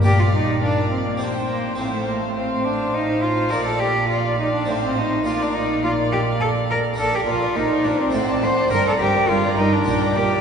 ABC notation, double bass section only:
X:1
M:3/4
L:1/8
Q:1/4=104
K:Bb
V:1 name="Double bass section" clef=bass
B,,,6 | A,,,6 | B,,,4 A,,,2 | B,,,6 |
[K:Gm] B,,, B,,, B,,, B,,, A,,, A,,, | G,,, G,,, G,,, G,,, B,,, B,,, |]